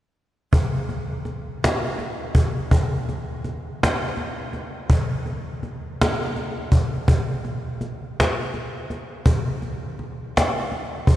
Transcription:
0.53 cajon bass
0.89 cajon slap
1.25 cajon slap
1.64 cajon slap
1.99 cajon slap
2.35 cajon bass
2.71 cajon bass
3.09 cajon slap
3.44 cajon slap
3.83 cajon slap
4.17 cajon slap
4.53 cajon slap
4.90 cajon bass
5.26 cajon slap
5.63 cajon slap
6.02 cajon slap
6.36 cajon slap
6.72 cajon bass
7.08 cajon bass
7.45 cajon slap
7.81 cajon slap
8.20 cajon slap
8.54 cajon slap
8.90 cajon slap
9.26 cajon bass
9.62 cajon slap
9.99 cajon slap
10.37 cajon slap
10.72 cajon slap
11.07 cajon bass

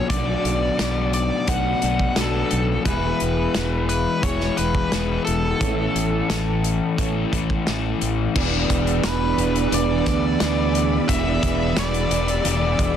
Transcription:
Already playing: B3 D4
0.09 B1 B2 F#3 A3 B3 D4 F#4 D5, kick, closed hi-hat
0.45 B1, closed hi-hat
0.78 B1 B2 F#3 B3 D4, snare, closed hi-hat
1.13 D5, closed hi-hat
1.48 B1 B2 F#3 A3 B3 D4 F#4 F#5, kick, closed hi-hat
1.82 B1 F#3 B3 D4, closed hi-hat
1.99 kick
2.16 B1 B2 F#3 B3 D4 A4, snare, closed hi-hat
2.51 B1, closed hi-hat
2.85 E1 E3 G#3 B3 E4 G#4 B4, kick, closed hi-hat
3.20 E1, closed hi-hat
3.54 E1 E3 G#3 B3 E4, snare, closed hi-hat
3.89 B4, closed hi-hat
4.22 E1 E3 G#3 B3 E4 C#5, kick, closed hi-hat
4.26 G#4
4.41 snare
4.57 E1 G#3 B3 E4 B4, closed hi-hat
4.75 kick
4.92 E1 E3 G#3 B3 E4, snare, closed hi-hat
5.25 E1 A4, closed hi-hat
5.60 A1 A2 E3 A3 B3 C#4 E4 A4 C#5, kick, closed hi-hat
5.95 A1, closed hi-hat
6.28 A1 E3 A3 C#4 E4, snare, closed hi-hat
6.64 closed hi-hat
6.97 A1 A2 E3 A3 B3 C#4 E4 A4 C#5, kick, closed hi-hat
7.32 A1 A3 C#4 E4, kick, closed hi-hat
7.50 kick
7.67 A1 E3 A3 C#4 E4, snare, closed hi-hat
8.01 A1, closed hi-hat
8.35 E1 E3 B3 D4 G#4 B4 D5 B5 E6, kick, crash
8.70 E1, kick, closed hi-hat
8.87 closed hi-hat
9.04 E1 B3 D4 G#4 B4, snare, closed hi-hat
9.37 E1 D4 G#4 B4, closed hi-hat
9.55 closed hi-hat
9.71 E1 E3 B3 D4 G#4 B4 D5, closed hi-hat
10.06 D2, kick, snare, closed hi-hat
10.39 D2 B3 D4 G#4 B4, snare, closed hi-hat
10.75 closed hi-hat
11.08 E1 E3 B3 D4 G#4 B4 E5, kick, closed hi-hat
11.43 E1, kick, closed hi-hat
11.76 E1 B3 D4 G#4 B4 D5, snare, closed hi-hat
11.94 closed hi-hat
12.10 E1 D4 G#4 B4, closed hi-hat
12.28 closed hi-hat
12.44 E1 E3 B3 D4 G#4 B4, closed hi-hat
12.79 E1, kick, closed hi-hat

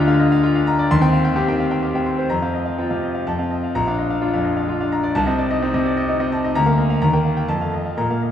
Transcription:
Already playing: D2 D4 F4 D#5 F5 A#5
0.08 D3 F5
0.19 D#5
0.32 F5
0.43 F4
0.55 D4 F5
0.67 A#5
0.79 D5
0.91 D#2 C6
1.01 C4 G5
1.13 F5
1.25 G5
1.36 C4 G4
1.48 D#3 G5
1.60 F5
1.71 G5
1.83 G4
1.95 C4 G5
2.06 C6
2.19 C5
2.30 F2 A#5
2.42 C4 F5
2.54 D#5
2.66 F5
2.78 C4 F4
2.90 C3 F5
3.03 D#5
3.15 F5
3.27 F2 A5
3.39 C4 F5
3.51 D#5
3.64 F5
3.75 A#1 A#5
3.87 D4 F5
3.98 D#5
4.10 F5
4.22 D4 F4
4.34 F2 F5
4.44 D#5
4.57 F5
4.68 F4
4.81 D4 F5
4.92 A#5
5.03 D5
5.15 C2 A5
5.27 C4 D#5
5.39 D5
5.50 D#4 D#5
5.62 C4 D#4
5.74 C3 D#5
5.86 D5
5.97 D#5
6.08 D#4
6.20 C4 D#5
6.32 A5
6.44 D#4 D#5
6.55 D2 A#5
6.66 A#3 F5
6.78 D#5
6.90 F5
7.02 D#2 A#5
7.13 A#3 G5
7.25 F5
7.37 G5
7.48 F2 A5
7.61 A3 F5
7.74 D#5
7.86 F5
7.97 A#2 A#5
8.10 A#3 F5
8.22 D#5

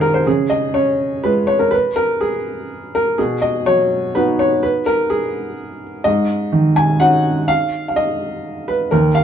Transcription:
Already playing: G#1 G#2 D#3 C4 G#4 C5 G#5
0.00 A#4 A#5
0.14 C5
0.26 C#3 G#4
0.50 D#5
0.74 C#4 C#5
1.24 G#3 F4 B4
1.47 C#5
1.59 A#4
1.71 B4
1.96 A#4
2.21 G#4
2.95 A#4
3.18 B2 G#4
3.42 D#5
3.66 F#3 C#5
4.15 B3 D#4 F#4 B4
4.39 C#5
4.63 B4
4.86 A#4
5.10 G#4
6.04 G#2 D#5
6.52 D#3
6.76 G#5
7.00 C#4 D#4 F#4 F#5
7.48 F5
7.88 F5
7.96 D#5
8.68 B4
8.91 D#2 A#4
9.15 F5

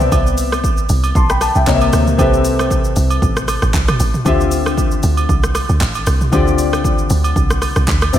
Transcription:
Already playing: B3 C4 D5 E5
0.00 mid tom, shaker
0.12 C2, kick, high agogo, shaker
0.27 shaker
0.38 open hi-hat, shaker
0.52 cross-stick, high agogo, shaker
0.64 kick, shaker
0.77 shaker
0.89 C2, open hi-hat, shaker
1.04 high agogo, shaker
1.15 B1 A5 C6, kick, shaker
1.30 G5 B5, cross-stick, shaker
1.41 A5, cross-stick, open hi-hat, high agogo, shaker
1.55 C2 E5 G5, shaker
1.67 C2 C3 A#3 C#5 D#5, kick, clap, shaker
1.75 E5
1.81 high agogo, shaker
1.93 D2, cross-stick, open hi-hat, shaker
2.07 mid tom, shaker
2.18 C2 C3 C4 G4 A4 B4 E5, kick, high agogo, shaker
2.34 shaker
2.45 open hi-hat, shaker
2.59 cross-stick, high agogo, shaker
2.71 kick, shaker
2.84 shaker
2.96 C2, open hi-hat, shaker
3.10 high agogo, shaker
3.22 A1, kick, shaker
3.37 cross-stick, shaker
3.48 cross-stick, open hi-hat, high agogo, shaker
3.62 A1, cross-stick, shaker
3.74 C2, kick, clap, shaker
3.88 cross-stick, mid tom, high agogo, shaker
4.00 A1, open hi-hat, shaker
4.14 mid tom, shaker
4.25 D2 D3 C4 F4 G4 E5, kick, high agogo, shaker
4.40 shaker
4.51 open hi-hat, shaker
4.66 cross-stick, high agogo, shaker
4.78 kick, shaker
4.91 shaker
5.03 D2, open hi-hat, shaker
5.17 high agogo, shaker
5.29 C2, kick, shaker
5.43 cross-stick, shaker
5.55 cross-stick, open hi-hat, high agogo, shaker
5.69 D2, shaker
5.81 A1, kick, clap, shaker
5.95 high agogo, shaker
6.07 C2, cross-stick, open hi-hat, shaker
6.21 mid tom, shaker
6.32 D2 D3 C4 F4 G4 D5, kick, high agogo, shaker
6.47 shaker
6.58 open hi-hat, shaker
6.73 cross-stick, high agogo, shaker
6.84 kick, shaker
6.98 shaker
7.10 D2, open hi-hat, shaker
7.24 high agogo, shaker
7.36 C2, kick, shaker
7.50 cross-stick, shaker
7.62 cross-stick, open hi-hat, high agogo, shaker
7.76 C2, cross-stick, shaker
7.88 D2, kick, clap, shaker
8.02 cross-stick, high agogo, shaker
8.13 C2 B3 C4 E4, open hi-hat, shaker

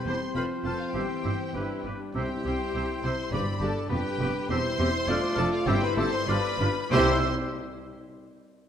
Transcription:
Already playing: G3 C4 C5
0.06 E1 E2 C4 E4 G4 C5 C6 G6
0.34 F1 F2 F3 C4 F4 B4 C5 B5 F6
0.64 F1 F2 C4 F4 A4 C5 A5 F6
0.80 F4 F5
0.94 G1 G2 E3 C4 E4 G4 C5 G5 E6
1.24 G1 G2 C4 E4 G4 C5 E6
1.54 G1 G2 G3 D4 E4 G4 B4 D6
1.84 G1 G2 D4 G4 B4 D6
2.15 C2 C3 C4 E4 G4 C5 G5 E6
2.45 C2 C3 C4 E4 G4 C5 E6
2.74 C2 C3 C4 E4 G4 C5 E6
3.03 C2 C3 C4 E4 G4 C5 C6 E6
3.32 G1 G2 D4 G4 B4 D5 B5 D6
3.60 G1 G2 D4 G4 A4 D5 A5 D6
3.89 F1 F2 G3 B3 G4 B4 G5 D6
4.19 F1 F2 B3 G4 B4 D6
4.49 E1 E2 C4 E4 G4 C5 C6 E6
4.79 E1 E2 C4 G4 C5 E6
5.07 F1 F2 A3 D4 F4 A4 D5 F6
5.36 F1 F2 D4 F4 A4 D5 A5 F6
5.52 F4 F5
5.66 G1 G2 G3 C4 E4 G4 C5 G5 E6
5.81 B4 B5
5.96 G1 G2 C4 E4 G4 A4 C5 A5 E6
6.13 C5 C6
6.28 G1 G2 D4 F4 G4 B4 D5 B5 F6
6.60 G1 G2 D4 F4 G4 D5 F6
6.92 C2 C3 G3 E4 G4 C5 E5 C6 E6

